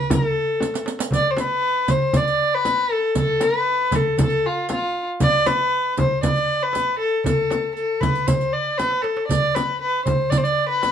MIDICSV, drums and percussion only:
0, 0, Header, 1, 4, 480
1, 0, Start_track
1, 0, Tempo, 510638
1, 1060, Time_signature, 4, 2, 24, 8
1, 10264, End_track
2, 0, Start_track
2, 0, Title_t, "Darbuka"
2, 94, Note_on_c, 9, 64, 88
2, 188, Note_off_c, 9, 64, 0
2, 331, Note_on_c, 9, 62, 28
2, 425, Note_off_c, 9, 62, 0
2, 583, Note_on_c, 9, 63, 60
2, 677, Note_off_c, 9, 63, 0
2, 696, Note_on_c, 9, 62, 62
2, 790, Note_off_c, 9, 62, 0
2, 808, Note_on_c, 9, 63, 69
2, 902, Note_off_c, 9, 63, 0
2, 931, Note_on_c, 9, 62, 80
2, 1025, Note_off_c, 9, 62, 0
2, 1040, Note_on_c, 9, 64, 80
2, 1134, Note_off_c, 9, 64, 0
2, 1284, Note_on_c, 9, 63, 76
2, 1378, Note_off_c, 9, 63, 0
2, 1769, Note_on_c, 9, 64, 90
2, 1863, Note_off_c, 9, 64, 0
2, 2007, Note_on_c, 9, 64, 83
2, 2101, Note_off_c, 9, 64, 0
2, 2141, Note_on_c, 9, 62, 28
2, 2235, Note_off_c, 9, 62, 0
2, 2492, Note_on_c, 9, 63, 63
2, 2586, Note_off_c, 9, 63, 0
2, 2964, Note_on_c, 9, 64, 85
2, 3058, Note_off_c, 9, 64, 0
2, 3207, Note_on_c, 9, 63, 67
2, 3301, Note_off_c, 9, 63, 0
2, 3680, Note_on_c, 9, 64, 87
2, 3774, Note_off_c, 9, 64, 0
2, 3927, Note_on_c, 9, 64, 78
2, 4021, Note_off_c, 9, 64, 0
2, 4051, Note_on_c, 9, 62, 26
2, 4145, Note_off_c, 9, 62, 0
2, 4412, Note_on_c, 9, 63, 67
2, 4506, Note_off_c, 9, 63, 0
2, 4890, Note_on_c, 9, 64, 74
2, 4984, Note_off_c, 9, 64, 0
2, 5143, Note_on_c, 9, 63, 70
2, 5237, Note_off_c, 9, 63, 0
2, 5621, Note_on_c, 9, 64, 85
2, 5715, Note_off_c, 9, 64, 0
2, 5855, Note_on_c, 9, 64, 76
2, 5949, Note_off_c, 9, 64, 0
2, 5976, Note_on_c, 9, 62, 24
2, 6070, Note_off_c, 9, 62, 0
2, 6327, Note_on_c, 9, 63, 64
2, 6421, Note_off_c, 9, 63, 0
2, 6808, Note_on_c, 9, 64, 76
2, 6902, Note_off_c, 9, 64, 0
2, 7054, Note_on_c, 9, 63, 65
2, 7148, Note_off_c, 9, 63, 0
2, 7303, Note_on_c, 9, 62, 26
2, 7397, Note_off_c, 9, 62, 0
2, 7529, Note_on_c, 9, 64, 85
2, 7623, Note_off_c, 9, 64, 0
2, 7666, Note_on_c, 9, 62, 25
2, 7760, Note_off_c, 9, 62, 0
2, 7785, Note_on_c, 9, 64, 83
2, 7879, Note_off_c, 9, 64, 0
2, 7907, Note_on_c, 9, 62, 24
2, 8001, Note_off_c, 9, 62, 0
2, 8020, Note_on_c, 9, 62, 23
2, 8114, Note_off_c, 9, 62, 0
2, 8259, Note_on_c, 9, 63, 47
2, 8353, Note_off_c, 9, 63, 0
2, 8374, Note_on_c, 9, 62, 53
2, 8468, Note_off_c, 9, 62, 0
2, 8499, Note_on_c, 9, 63, 66
2, 8593, Note_off_c, 9, 63, 0
2, 8617, Note_on_c, 9, 62, 80
2, 8711, Note_off_c, 9, 62, 0
2, 8736, Note_on_c, 9, 64, 90
2, 8830, Note_off_c, 9, 64, 0
2, 8977, Note_on_c, 9, 63, 69
2, 9071, Note_off_c, 9, 63, 0
2, 9455, Note_on_c, 9, 64, 92
2, 9549, Note_off_c, 9, 64, 0
2, 9696, Note_on_c, 9, 64, 83
2, 9790, Note_off_c, 9, 64, 0
2, 9820, Note_on_c, 9, 62, 22
2, 9914, Note_off_c, 9, 62, 0
2, 10177, Note_on_c, 9, 63, 68
2, 10264, Note_off_c, 9, 63, 0
2, 10264, End_track
3, 0, Start_track
3, 0, Title_t, "Frame drum"
3, 96, Note_on_c, 9, 64, 102
3, 190, Note_off_c, 9, 64, 0
3, 569, Note_on_c, 9, 64, 67
3, 663, Note_off_c, 9, 64, 0
3, 1054, Note_on_c, 9, 64, 66
3, 1148, Note_off_c, 9, 64, 0
3, 1290, Note_on_c, 9, 64, 66
3, 1384, Note_off_c, 9, 64, 0
3, 1769, Note_on_c, 9, 64, 75
3, 1863, Note_off_c, 9, 64, 0
3, 2006, Note_on_c, 9, 64, 78
3, 2100, Note_off_c, 9, 64, 0
3, 2492, Note_on_c, 9, 64, 61
3, 2586, Note_off_c, 9, 64, 0
3, 2965, Note_on_c, 9, 64, 72
3, 3059, Note_off_c, 9, 64, 0
3, 3201, Note_on_c, 9, 64, 65
3, 3295, Note_off_c, 9, 64, 0
3, 3688, Note_on_c, 9, 64, 79
3, 3782, Note_off_c, 9, 64, 0
3, 3939, Note_on_c, 9, 64, 93
3, 4033, Note_off_c, 9, 64, 0
3, 4416, Note_on_c, 9, 64, 71
3, 4510, Note_off_c, 9, 64, 0
3, 4894, Note_on_c, 9, 64, 86
3, 4988, Note_off_c, 9, 64, 0
3, 5136, Note_on_c, 9, 64, 74
3, 5230, Note_off_c, 9, 64, 0
3, 5624, Note_on_c, 9, 64, 83
3, 5718, Note_off_c, 9, 64, 0
3, 5863, Note_on_c, 9, 64, 88
3, 5957, Note_off_c, 9, 64, 0
3, 6353, Note_on_c, 9, 64, 55
3, 6447, Note_off_c, 9, 64, 0
3, 6823, Note_on_c, 9, 64, 87
3, 6917, Note_off_c, 9, 64, 0
3, 7059, Note_on_c, 9, 64, 66
3, 7153, Note_off_c, 9, 64, 0
3, 7544, Note_on_c, 9, 64, 81
3, 7638, Note_off_c, 9, 64, 0
3, 7783, Note_on_c, 9, 64, 80
3, 7877, Note_off_c, 9, 64, 0
3, 8268, Note_on_c, 9, 64, 70
3, 8362, Note_off_c, 9, 64, 0
3, 8750, Note_on_c, 9, 64, 72
3, 8844, Note_off_c, 9, 64, 0
3, 8990, Note_on_c, 9, 64, 74
3, 9084, Note_off_c, 9, 64, 0
3, 9469, Note_on_c, 9, 64, 74
3, 9563, Note_off_c, 9, 64, 0
3, 9702, Note_on_c, 9, 64, 76
3, 9796, Note_off_c, 9, 64, 0
3, 10180, Note_on_c, 9, 64, 58
3, 10264, Note_off_c, 9, 64, 0
3, 10264, End_track
4, 0, Start_track
4, 0, Title_t, "Riq"
4, 104, Note_on_c, 9, 54, 68
4, 198, Note_off_c, 9, 54, 0
4, 587, Note_on_c, 9, 54, 55
4, 681, Note_off_c, 9, 54, 0
4, 708, Note_on_c, 9, 54, 67
4, 802, Note_off_c, 9, 54, 0
4, 824, Note_on_c, 9, 54, 66
4, 918, Note_off_c, 9, 54, 0
4, 943, Note_on_c, 9, 54, 85
4, 1037, Note_off_c, 9, 54, 0
4, 1067, Note_on_c, 9, 54, 53
4, 1161, Note_off_c, 9, 54, 0
4, 1299, Note_on_c, 9, 54, 43
4, 1393, Note_off_c, 9, 54, 0
4, 1769, Note_on_c, 9, 54, 52
4, 1863, Note_off_c, 9, 54, 0
4, 2010, Note_on_c, 9, 54, 56
4, 2104, Note_off_c, 9, 54, 0
4, 2139, Note_on_c, 9, 54, 17
4, 2233, Note_off_c, 9, 54, 0
4, 2495, Note_on_c, 9, 54, 41
4, 2589, Note_off_c, 9, 54, 0
4, 2964, Note_on_c, 9, 54, 57
4, 3058, Note_off_c, 9, 54, 0
4, 3204, Note_on_c, 9, 54, 44
4, 3298, Note_off_c, 9, 54, 0
4, 3685, Note_on_c, 9, 54, 56
4, 3779, Note_off_c, 9, 54, 0
4, 3934, Note_on_c, 9, 54, 62
4, 4028, Note_off_c, 9, 54, 0
4, 4043, Note_on_c, 9, 54, 16
4, 4137, Note_off_c, 9, 54, 0
4, 4406, Note_on_c, 9, 54, 42
4, 4500, Note_off_c, 9, 54, 0
4, 4891, Note_on_c, 9, 54, 56
4, 4985, Note_off_c, 9, 54, 0
4, 5136, Note_on_c, 9, 54, 46
4, 5230, Note_off_c, 9, 54, 0
4, 5616, Note_on_c, 9, 54, 44
4, 5710, Note_off_c, 9, 54, 0
4, 5858, Note_on_c, 9, 54, 59
4, 5952, Note_off_c, 9, 54, 0
4, 5976, Note_on_c, 9, 54, 16
4, 6070, Note_off_c, 9, 54, 0
4, 6346, Note_on_c, 9, 54, 45
4, 6440, Note_off_c, 9, 54, 0
4, 6828, Note_on_c, 9, 54, 55
4, 6922, Note_off_c, 9, 54, 0
4, 7064, Note_on_c, 9, 54, 42
4, 7158, Note_off_c, 9, 54, 0
4, 7302, Note_on_c, 9, 54, 15
4, 7396, Note_off_c, 9, 54, 0
4, 7548, Note_on_c, 9, 54, 54
4, 7642, Note_off_c, 9, 54, 0
4, 7664, Note_on_c, 9, 54, 16
4, 7758, Note_off_c, 9, 54, 0
4, 7780, Note_on_c, 9, 54, 56
4, 7874, Note_off_c, 9, 54, 0
4, 7905, Note_on_c, 9, 54, 15
4, 7999, Note_off_c, 9, 54, 0
4, 8266, Note_on_c, 9, 54, 42
4, 8360, Note_off_c, 9, 54, 0
4, 8747, Note_on_c, 9, 54, 54
4, 8841, Note_off_c, 9, 54, 0
4, 8987, Note_on_c, 9, 54, 43
4, 9081, Note_off_c, 9, 54, 0
4, 9462, Note_on_c, 9, 54, 44
4, 9556, Note_off_c, 9, 54, 0
4, 9702, Note_on_c, 9, 54, 52
4, 9796, Note_off_c, 9, 54, 0
4, 9823, Note_on_c, 9, 54, 18
4, 9917, Note_off_c, 9, 54, 0
4, 10180, Note_on_c, 9, 54, 39
4, 10264, Note_off_c, 9, 54, 0
4, 10264, End_track
0, 0, End_of_file